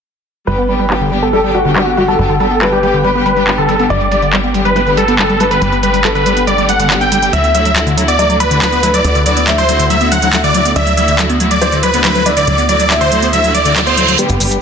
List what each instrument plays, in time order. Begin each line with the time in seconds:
0.47 analog synth bass G1, string section D3 G3 B3 G4, acid bass G3, grand piano B4, supersaw synth B4, closed hi-hat
0.58 acid bass B3
0.69 string section D3 G3 B3 G4, acid bass G3, supersaw synth B4, closed hi-hat
0.79 acid bass G3, closed hi-hat
0.90 string section D3 G3 B3 G4, acid bass G3, clap, closed hi-hat
1.01 acid bass D3
1.12 string section D3 G3 B3 G4, acid bass G3, closed hi-hat
1.22 acid bass B3, supersaw synth A4, closed hi-hat
1.33 string section D3 G3 B3 G4, acid bass G3, grand piano A4, closed hi-hat
1.44 string section D3 G3 B3 G4, acid bass G3, closed hi-hat
1.54 acid bass G3, supersaw synth F#4, closed hi-hat
1.65 acid bass D3, string section D3 G3 B3 G4, closed hi-hat
1.76 string section D3 G3 B3 G4, acid bass G3, supersaw synth F#4, clap, closed hi-hat
1.87 acid bass B3, closed hi-hat
1.97 string section D3 G3 B3 G4, acid bass G3, grand piano F#4, closed hi-hat
2.08 string section D3 G3 B3 G4, acid bass G3, supersaw synth A4, closed hi-hat
2.19 analog synth bass G1, string section D3 G3 B3 G4, acid bass G3, closed hi-hat
2.29 acid bass D3, closed hi-hat
2.40 string section D3 G3 B3 G4, acid bass G3, supersaw synth A4, closed hi-hat
2.51 acid bass B3, closed hi-hat
2.61 string section D3 G3 B3 G4, acid bass G3, grand piano B4, clap, closed hi-hat
2.72 acid bass G3, supersaw synth G4, closed hi-hat
2.83 string section D3 G3 B3 G4, acid bass G3, closed hi-hat
2.94 acid bass D3, closed hi-hat
3.04 string section D3 G3 B3 G4, acid bass G3, supersaw synth B4, closed hi-hat
3.15 string section D3 G3 B3 G4, acid bass B3, closed hi-hat
3.26 acid bass G3, supersaw synth B4, closed hi-hat
3.36 string section D3 G3 B3 G4, acid bass G3, closed hi-hat
3.47 string section D3 G3 B3 G4, acid bass G3, clap, closed hi-hat
3.58 acid bass D3, supersaw synth A4, closed hi-hat
3.69 string section D3 G3 B3 G4, acid bass G3, closed hi-hat
3.79 string section D3 G3 B3 G4, acid bass B3, closed hi-hat
3.90 analog synth bass G1, string section D3 G3 B3 G4, acid bass G3, grand piano D5, supersaw synth D5, closed hi-hat
4.01 acid bass G3, closed hi-hat
4.12 string section D3 G3 B3 G4, acid bass G3, supersaw synth D5, closed hi-hat
4.22 acid bass D3, closed hi-hat
4.33 string section D3 G3 B3 G4, acid bass G3, clap, closed hi-hat
4.44 acid bass B3, closed hi-hat
4.54 string section D3 G3 B3 G4, acid bass G3, closed hi-hat
4.65 acid bass G3, supersaw synth B4, closed hi-hat
4.76 string section D3 G3 B3 G4, acid bass G3, grand piano B4, closed hi-hat
4.86 acid bass D3, string section D3 G3 B3 G4, closed hi-hat
4.97 acid bass G3, supersaw synth A4, closed hi-hat
5.08 string section D3 G3 B3 G4, acid bass B3, closed hi-hat
5.19 string section D3 G3 B3 G4, acid bass G3, supersaw synth A4, clap, closed hi-hat
5.29 acid bass G3, closed hi-hat
5.40 string section D3 G3 B3 G4, acid bass G3, grand piano B4, closed hi-hat
5.51 acid bass D3, string section D3 G3 B3 G4, supersaw synth B4, closed hi-hat
5.62 analog synth bass G1, string section D3 G3 B3 G4, acid bass G3, closed hi-hat
5.72 acid bass B3, closed hi-hat
5.83 string section D3 G3 B3 G4, acid bass G3, supersaw synth B4, closed hi-hat
5.94 acid bass G3, closed hi-hat
6.04 string section D3 G3 B3 G4, acid bass G3, grand piano A4, clap, closed hi-hat
6.15 acid bass D3, supersaw synth B4, closed hi-hat
6.26 string section D3 G3 B3 G4, acid bass G3, closed hi-hat
6.37 acid bass B3, closed hi-hat
6.47 string section D3 G3 B3 G4, acid bass G3, supersaw synth D5, closed hi-hat
6.58 string section D3 G3 B3 G4, acid bass G3, closed hi-hat
6.69 acid bass G3, supersaw synth F#5, closed hi-hat
6.79 acid bass D3, string section D3 G3 B3 G4, closed hi-hat
6.90 string section D3 G3 B3 G4, acid bass G3, clap, closed hi-hat
7.01 acid bass B3, supersaw synth G5, closed hi-hat
7.12 string section D3 G3 B3 G4, acid bass G3, closed hi-hat
7.22 string section D3 G3 B3 G4, acid bass G3, closed hi-hat
7.33 analog synth bass D2, string section D3 A3 E4 F#4, acid bass F#3, grand piano E5, supersaw synth E5, closed hi-hat
7.44 acid bass B3, closed hi-hat
7.54 string section D3 A3 E4 F#4, acid bass F#3, supersaw synth E5, closed hi-hat
7.65 acid bass F#3, closed hi-hat
7.76 string section D3 A3 E4 F#4, acid bass F#3, clap, closed hi-hat
7.86 acid bass D3, closed hi-hat
7.97 string section D3 A3 E4 F#4, acid bass F#3, closed hi-hat
8.08 acid bass B3, supersaw synth D5, closed hi-hat
8.19 string section D3 A3 E4 F#4, acid bass F#3, grand piano D5, closed hi-hat
8.29 string section D3 A3 E4 F#4, acid bass F#3, closed hi-hat
8.40 acid bass F#3, supersaw synth B4, closed hi-hat
8.51 acid bass D3, string section D3 A3 E4 F#4, closed hi-hat
8.61 string section D3 A3 E4 F#4, acid bass F#3, supersaw synth B4, clap, closed hi-hat
8.72 acid bass B3, closed hi-hat
8.83 string section D3 A3 E4 F#4, acid bass F#3, grand piano B4, closed hi-hat
8.94 string section D3 A3 E4 F#4, acid bass F#3, supersaw synth D5, closed hi-hat
9.04 analog synth bass D2, string section D3 A3 E4 F#4, acid bass F#3, closed hi-hat
9.15 acid bass D3, closed hi-hat
9.26 string section D3 A3 E4 F#4, acid bass F#3, supersaw synth D5, closed hi-hat
9.37 acid bass B3, closed hi-hat
9.47 string section D3 A3 E4 F#4, acid bass F#3, grand piano E5, clap, closed hi-hat
9.58 acid bass F#3, supersaw synth C5, closed hi-hat
9.69 string section D3 A3 E4 F#4, acid bass F#3, closed hi-hat
9.79 acid bass D3, closed hi-hat
9.90 string section D3 A3 E4 F#4, acid bass F#3, supersaw synth E5, closed hi-hat
10.01 string section D3 A3 E4 F#4, acid bass B3, closed hi-hat
10.12 acid bass F#3, supersaw synth F#5, closed hi-hat
10.22 string section D3 A3 E4 F#4, acid bass F#3, closed hi-hat
10.33 string section D3 A3 E4 F#4, acid bass F#3, clap, closed hi-hat
10.44 acid bass D3, supersaw synth D5, closed hi-hat
10.54 string section D3 A3 E4 F#4, acid bass F#3, closed hi-hat
10.65 string section D3 A3 E4 F#4, acid bass B3, closed hi-hat
10.76 analog synth bass D2, string section D3 A3 E4 F#4, acid bass F#3, grand piano D5, supersaw synth E5, closed hi-hat
10.87 acid bass F#3, closed hi-hat
10.97 string section D3 A3 E4 F#4, acid bass F#3, supersaw synth E5, closed hi-hat
11.08 acid bass D3, closed hi-hat
11.19 string section D3 A3 E4 F#4, acid bass F#3, clap, closed hi-hat
11.29 acid bass B3, closed hi-hat
11.40 string section D3 A3 E4 F#4, acid bass F#3, closed hi-hat
11.51 acid bass F#3, supersaw synth D5, closed hi-hat
11.61 string section D3 A3 E4 F#4, acid bass F#3, grand piano C5, closed hi-hat
11.72 string section D3 A3 E4 F#4, acid bass D3, closed hi-hat
11.83 acid bass F#3, supersaw synth B4, closed hi-hat
11.94 string section D3 A3 E4 F#4, acid bass B3, closed hi-hat
12.04 string section D3 A3 E4 F#4, acid bass F#3, supersaw synth B4, clap, closed hi-hat
12.15 acid bass F#3, closed hi-hat
12.26 string section D3 A3 E4 F#4, acid bass F#3, grand piano D5, closed hi-hat
12.37 acid bass D3, string section D3 A3 E4 F#4, supersaw synth D5, closed hi-hat
12.47 analog synth bass D2, string section D3 A3 E4 F#4, acid bass F#3, closed hi-hat
12.58 acid bass B3, closed hi-hat
12.69 string section D3 A3 E4 F#4, acid bass F#3, supersaw synth D5, closed hi-hat
12.80 acid bass F#3, closed hi-hat
12.90 string section D3 A3 E4 F#4, acid bass F#3, grand piano E5, clap, closed hi-hat
13.01 acid bass D3, supersaw synth C5, closed hi-hat
13.12 string section D3 A3 E4 F#4, acid bass F#3, closed hi-hat
13.22 acid bass B3, closed hi-hat
13.33 string section D3 A3 E4 F#4, acid bass F#3, supersaw synth E5, closed hi-hat, reverse cymbal
13.44 string section D3 A3 E4 F#4, acid bass F#3, closed hi-hat
13.54 acid bass F#3, supersaw synth D5, closed hi-hat
13.65 acid bass D3, string section D3 A3 E4 F#4, closed hi-hat
13.76 string section D3 A3 E4 F#4, acid bass F#3, clap, closed hi-hat
13.87 acid bass B3, supersaw synth C5, closed hi-hat
13.97 string section D3 A3 E4 F#4, acid bass F#3, closed hi-hat
14.08 string section D3 A3 E4 F#4, acid bass F#3, closed hi-hat
14.18 string section D3 G3 B3 G4, acid bass G3, supersaw synth G4 B4, closed hi-hat, riser, maracas
14.29 analog synth bass G1, acid bass B3, closed hi-hat, maracas
14.40 analog synth bass G1, string section D3 G3 B3 G4, acid bass G3, supersaw synth G4 B4, open hi-hat, maracas
14.51 acid bass G3, closed hi-hat, maracas